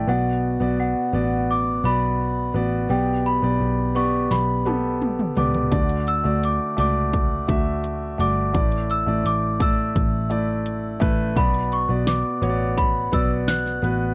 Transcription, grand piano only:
0.00 0.09 D5 medium
0.07 1.10 B2 medium
0.07 0.56 B3 medium
0.07 0.57 F#4 medium
0.07 0.57 D5 medium
0.60 1.09 B3 medium
0.60 1.10 F#4 medium
0.60 1.10 D5 medium
1.13 1.78 B3 medium
1.13 1.79 F#4 medium
1.13 1.79 D5 medium
1.84 2.49 B3 medium
1.84 2.50 F#4 medium
1.84 2.50 D5 medium
2.54 2.87 B3 medium
2.54 2.87 F#4 medium
2.54 2.88 D5 medium
2.89 3.92 B2 medium
2.89 3.38 B3 medium
2.89 3.39 G4 medium
2.89 3.39 D5 medium
3.42 3.91 B3 medium
3.42 3.92 G4 medium
3.42 3.92 D5 medium
3.95 4.61 B3 medium
3.95 4.61 G4 medium
3.95 4.61 D5 medium
4.65 5.31 B3 medium
4.65 5.31 G4 medium
4.65 5.32 A4 medium
5.37 5.69 B3 medium
5.37 5.70 G4 medium
5.37 5.70 D5 medium
5.71 6.74 D3 medium
5.71 6.21 A3 medium
5.71 6.21 F#4 medium
5.71 6.21 D5 medium
6.24 6.73 A3 medium
6.24 6.74 F#4 medium
6.24 6.74 D5 medium
6.77 7.43 A3 medium
6.77 7.43 F#4 medium
6.77 7.43 D5 medium
7.48 8.14 A3 medium
7.48 8.14 F#4 medium
7.48 8.14 E5 medium
8.18 8.51 A3 medium
8.18 8.52 F#4 medium
8.18 8.52 D5 medium
8.53 9.56 A2 medium
8.53 9.03 A3 medium
8.53 9.03 E4 medium
8.53 9.04 D5 medium
9.06 9.56 A3 medium
9.06 9.56 E4 medium
9.06 9.57 D5 medium
9.60 10.25 A3 medium
9.60 10.26 E4 medium
9.60 10.26 D5 medium
10.30 10.95 A3 medium
10.30 10.96 E4 medium
10.30 10.96 D5 medium
11.00 11.33 A3 medium
11.00 11.34 E4 medium
11.00 11.34 B4 medium
11.35 12.38 B2 medium
11.35 11.85 B3 medium
11.35 11.85 F#4 medium
11.35 11.86 D5 medium
11.88 12.38 B3 medium
11.88 12.38 F#4 medium
11.88 12.39 D5 medium
12.42 13.07 B3 medium
12.42 13.07 F#4 medium
12.42 12.49 C#5 medium
12.50 13.11 D5 medium
13.12 13.78 B3 medium
13.12 13.78 F#4 medium
13.12 13.78 D5 medium
13.82 14.14 B3 medium
13.82 14.14 F#4 medium
13.82 14.14 B4 medium

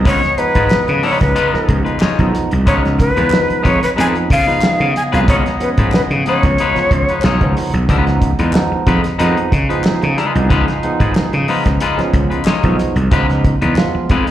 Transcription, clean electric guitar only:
0.05 0.24 G#3 medium
0.05 0.22 D#4 medium
0.05 0.22 F4 medium
0.05 0.22 B4 loud
0.23 muted clean electric guitar stroke soft
0.38 muted clean electric guitar stroke soft
0.55 0.69 G#3 medium
0.55 0.69 D#4 medium
0.55 0.69 F4 medium
0.55 0.69 B4 medium
0.70 muted clean electric guitar stroke soft
0.88 muted clean electric guitar stroke soft
1.02 1.24 G#3 medium
1.02 1.21 D#4 medium
1.02 1.20 F4 loud
1.02 1.19 B4 loud
1.20 muted clean electric guitar stroke soft
1.35 1.54 G#3 medium
1.35 1.55 D#4 medium
1.35 1.55 F4 loud
1.35 1.55 B4 loud
1.68 muted clean electric guitar stroke soft
1.85 1.99 G#3 soft
1.85 1.99 D#4 soft
1.85 1.99 F4 soft
1.85 1.99 B4 medium
2.01 2.31 G#3 medium
2.01 2.32 D#4 medium
2.01 2.32 F4 medium
2.01 2.32 C#5 medium
2.33 muted clean electric guitar stroke soft
2.51 muted clean electric guitar stroke soft
2.66 2.85 G#3 medium
2.66 2.84 D#4 medium
2.66 2.83 F4 loud
2.66 2.82 B4 loud
2.84 muted clean electric guitar stroke medium
2.98 muted clean electric guitar stroke soft
3.16 3.30 G#3 medium
3.16 3.30 D#4 medium
3.16 3.30 F4 medium
3.16 3.30 B4 medium
3.32 muted clean electric guitar stroke soft
3.49 muted clean electric guitar stroke medium
3.63 3.82 G#3 medium
3.63 3.81 D#4 medium
3.63 3.81 F4 medium
3.63 3.80 B4 loud
3.82 muted clean electric guitar stroke soft
3.96 4.15 G#3 medium
3.96 4.16 D#4 medium
3.96 4.16 F4 medium
3.96 4.16 B4 medium
4.30 muted clean electric guitar stroke soft
4.47 4.61 G#3 soft
4.47 4.61 D#4 soft
4.47 4.61 F4 medium
4.47 4.60 B4 medium
4.79 muted clean electric guitar stroke soft
5.12 5.27 G#3 medium
5.12 5.28 D#4 medium
5.12 5.28 F4 medium
5.12 5.28 B4 medium
5.28 5.47 G#3 medium
5.28 5.46 D#4 medium
5.28 5.45 F4 loud
5.28 5.45 B4 medium
5.46 muted clean electric guitar stroke soft
5.61 muted clean electric guitar stroke soft
5.79 5.92 G#3 medium
5.79 5.92 D#4 medium
5.79 5.92 F4 medium
5.79 5.92 B4 medium
5.95 muted clean electric guitar stroke soft
6.13 muted clean electric guitar stroke soft
6.27 6.45 G#3 medium
6.27 6.45 D#4 medium
6.27 6.45 F4 medium
6.27 6.44 B4 medium
6.45 muted clean electric guitar stroke soft
6.60 6.78 G#3 medium
6.60 6.78 D#4 medium
6.60 6.78 F4 loud
6.60 6.78 B4 medium
6.93 muted clean electric guitar stroke soft
7.09 7.23 G#3 soft
7.09 7.23 D#4 soft
7.09 7.23 F4 soft
7.09 7.22 B4 medium
7.24 7.54 G#3 medium
7.24 7.55 D#4 medium
7.24 7.55 F4 medium
7.24 7.55 C#5 medium
7.57 muted clean electric guitar stroke soft
7.75 muted clean electric guitar stroke soft
7.89 8.10 G#3 medium
7.89 8.06 D#4 medium
7.89 8.06 F4 medium
7.89 8.06 B4 loud
8.07 muted clean electric guitar stroke soft
8.23 muted clean electric guitar stroke soft
8.39 8.53 G#3 medium
8.39 8.53 D#4 medium
8.39 8.52 F4 medium
8.39 8.52 B4 medium
8.54 muted clean electric guitar stroke soft
8.72 muted clean electric guitar stroke medium
8.87 9.05 G#3 medium
8.87 9.03 D#4 medium
8.87 9.03 F4 medium
8.87 9.02 B4 loud
9.03 muted clean electric guitar stroke soft
9.18 9.38 G#3 medium
9.18 9.38 D#4 loud
9.18 9.38 F4 medium
9.18 9.38 B4 medium
9.51 muted clean electric guitar stroke soft
9.69 9.83 G#3 soft
9.69 9.83 D#4 soft
9.69 9.83 F4 medium
9.69 9.82 B4 medium
10.02 muted clean electric guitar stroke soft
10.17 10.38 G#3 medium
10.17 10.35 D#4 medium
10.17 10.35 F4 medium
10.17 10.34 B4 medium
10.35 muted clean electric guitar stroke soft
10.49 10.68 G#3 medium
10.49 10.67 D#4 loud
10.49 10.67 F4 loud
10.49 10.66 B4 loud
10.67 muted clean electric guitar stroke medium
10.83 muted clean electric guitar stroke soft
11.00 11.14 G#3 medium
11.00 11.13 D#4 medium
11.00 11.13 F4 medium
11.00 11.13 B4 medium
11.15 muted clean electric guitar stroke soft
11.33 muted clean electric guitar stroke medium
11.48 11.67 G#3 medium
11.48 11.66 D#4 medium
11.48 11.65 F4 medium
11.48 11.65 B4 medium
11.66 muted clean electric guitar stroke soft
11.81 12.00 G#3 loud
11.81 12.00 D#4 loud
11.81 12.00 F4 loud
11.81 12.00 B4 medium
12.13 muted clean electric guitar stroke soft
12.30 12.44 G#3 soft
12.30 12.44 D#4 soft
12.30 12.44 F4 medium
12.30 12.44 B4 medium
12.46 12.76 G#3 medium
12.46 12.77 D#4 medium
12.46 12.77 F4 medium
12.46 12.77 C#5 medium
12.78 muted clean electric guitar stroke soft
12.96 muted clean electric guitar stroke soft
13.11 13.30 G#3 loud
13.11 13.29 D#4 medium
13.11 13.28 F4 loud
13.11 13.28 B4 loud
13.29 muted clean electric guitar stroke medium
13.45 muted clean electric guitar stroke soft
13.61 13.75 G#3 medium
13.61 13.75 D#4 medium
13.61 13.75 F4 medium
13.61 13.75 B4 medium
13.78 muted clean electric guitar stroke soft
13.95 muted clean electric guitar stroke soft
14.11 14.29 G#3 medium
14.11 14.29 D#4 medium
14.11 14.28 F4 medium
14.11 14.28 B4 loud

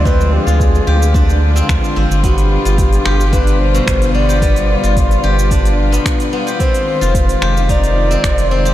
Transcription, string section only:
0.00 6.56 D3 medium
0.00 2.20 F3 medium
0.00 2.20 G#3 medium
0.00 8.74 F4 medium
2.24 6.56 B2 medium
2.24 6.56 G3 medium
6.60 8.74 D#3 medium
6.60 8.74 G#3 medium
6.60 8.74 C4 medium

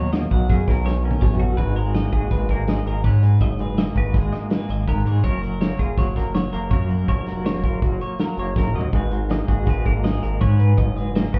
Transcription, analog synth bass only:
0.00 0.27 D#2 loud
0.31 0.48 B1 medium
0.50 0.66 F#2 medium
0.68 1.16 B1 medium
1.22 1.55 A1 loud
1.58 2.07 G#1 loud
2.12 2.29 G#1 medium
2.31 2.48 G#1 medium
2.49 2.82 G#1 medium
2.86 3.02 G#1 medium
3.04 3.37 G#2 loud
3.41 3.90 F#1 loud
3.95 4.12 G#1 medium
4.14 4.31 G#1 medium
4.69 4.86 G#1 medium
4.88 5.04 G#1 loud
5.05 5.22 G#2 medium
5.24 5.74 F#1 loud
5.79 5.96 F#1 medium
5.97 6.14 F#1 medium
6.16 6.49 F#1 medium
6.53 6.70 F#1 medium
6.71 7.04 F#2 loud
7.09 7.58 F1 loud
7.63 7.80 F#1 medium
7.82 7.99 F#1 medium
8.37 8.54 F#1 medium
8.56 8.73 F#1 loud
8.74 8.91 D#2 medium
8.93 9.43 G#1 medium
9.48 9.65 G#1 medium
9.67 9.84 G#1 medium
9.85 10.19 G#1 loud
10.23 10.39 G#1 medium
10.41 10.74 G#2 loud
10.78 11.28 F#1 loud
11.34 11.39 G#1 medium

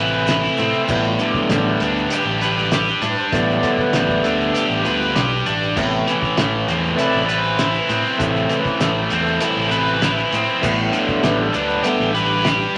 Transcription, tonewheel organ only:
0.00 0.84 C3 medium
0.00 0.84 A3 medium
0.58 0.87 A4 medium
0.88 1.81 G3 medium
0.88 1.81 A3 medium
0.88 1.81 B3 medium
0.88 1.05 G4 loud
1.06 1.13 F4 medium
1.22 1.49 G4 loud
1.54 1.66 A4 loud
1.69 2.24 B4 medium
1.82 2.09 G3 soft
1.82 2.09 A3 soft
1.82 2.09 B3 medium
2.74 2.89 A4 medium
2.90 3.17 B4 medium
3.20 3.26 C5 loud
3.32 4.83 G3 medium
3.32 4.83 A3 medium
3.32 4.82 B3 medium
3.32 3.80 D5 loud
3.80 4.26 B4 loud
4.23 4.66 A4 loud
4.68 4.85 G4 medium
4.83 5.12 G3 soft
4.83 5.12 A3 soft
4.83 5.12 B3 medium
4.83 4.91 F4 medium
4.99 5.28 F4 medium
5.76 6.17 C3 medium
5.76 6.17 A3 medium
5.76 6.17 B3 medium
6.95 7.24 C3 soft
6.95 7.24 A3 soft
6.95 7.24 B4 medium
6.95 7.39 D5 medium
7.36 7.79 C5 medium
7.79 8.21 B4 medium
8.17 8.59 C3 medium
8.17 8.59 A3 medium
8.17 8.61 A4 medium
8.59 8.81 B4 medium
8.80 9.15 A4 medium
9.13 9.21 B4 medium
9.22 9.78 A4 medium
9.69 9.98 C3 medium
9.69 9.98 A3 soft
9.69 9.98 B4 medium
10.61 11.49 G3 medium
10.61 11.49 A3 soft
10.61 11.49 B3 medium
11.26 11.40 B4 loud
11.42 11.56 A4 loud
11.55 11.86 B4 loud
11.83 12.11 G3 medium
11.83 12.11 A3 soft
11.83 12.11 B3 medium
11.83 12.14 A4 loud
12.14 12.76 G4 loud

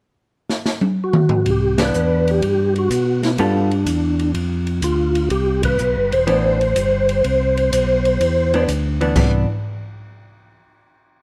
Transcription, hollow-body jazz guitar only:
1.79 2.39 E3 medium
1.79 2.40 B3 medium
1.79 2.40 D4 medium
3.39 3.69 G3 medium
3.39 3.69 B3 soft
3.39 3.69 F4 medium
3.39 3.69 A4 medium
6.27 6.57 E3 medium
6.27 6.57 B3 medium
6.27 6.58 D4 medium
8.54 8.67 E3 medium
8.54 8.68 B3 medium
8.54 8.68 D4 medium
9.01 9.15 E3 medium
9.01 9.15 B3 medium
9.01 9.15 D4 medium
9.16 9.46 E3 medium
9.16 9.46 B3 medium
9.16 9.47 D4 medium

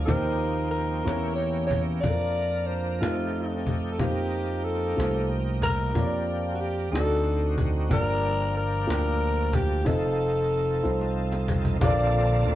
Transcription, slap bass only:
0.08 1.02 D#2 medium
1.06 2.00 E2 medium
2.04 2.98 F2 medium
3.02 3.96 F2 medium
3.99 4.93 F2 medium
4.98 5.92 C2 medium
5.95 6.89 F2 medium
6.93 7.87 D2 medium
7.90 8.85 G1 medium
8.89 9.83 D2 medium
9.86 10.80 F1 medium
10.85 11.78 C2 medium
11.81 12.43 A#1 loud
12.46 12.55 D2 medium

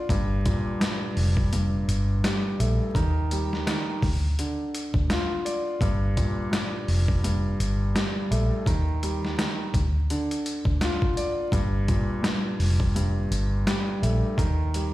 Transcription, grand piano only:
0.00 0.12 D5 medium
0.10 0.78 G2 loud
0.45 1.88 A#2 medium
0.80 1.51 G2 medium
1.52 2.95 G2 medium
2.24 2.95 G3 medium
2.60 2.95 A3 medium
2.95 3.65 D#3 medium
3.32 4.03 G3 medium
3.66 4.02 D#3 medium
4.39 5.81 D3 medium
5.10 5.81 F4 medium
5.45 5.81 D5 medium
5.81 6.50 G2 loud
6.17 7.59 A#2 medium
6.51 7.22 G2 medium
7.24 8.67 G2 medium
7.95 8.66 G3 medium
8.31 8.67 A3 medium
8.66 9.36 D#3 medium
9.03 9.74 G3 medium
9.38 9.74 D#3 medium
10.10 11.53 D3 medium
10.82 11.53 F4 medium
11.17 11.52 D5 medium
11.52 12.21 G2 loud
11.88 13.31 A#2 medium
12.22 12.94 G2 medium
12.95 14.38 G2 medium
13.67 14.38 G3 medium
14.02 14.38 A3 medium
14.37 14.94 D#3 loud
14.75 14.94 G3 medium

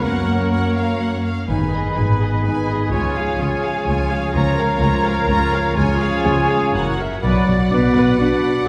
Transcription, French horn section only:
0.03 1.25 F#3 soft
0.03 1.23 C#4 soft
1.49 2.88 D#3 soft
1.49 2.88 B3 soft
2.92 5.73 F3 soft
2.92 5.73 C#4 soft
5.77 6.70 F3 medium
5.77 6.95 C#4 medium
6.74 6.97 E3 medium
7.24 7.68 F#3 medium
7.73 8.19 B3 medium
8.20 8.66 D4 medium

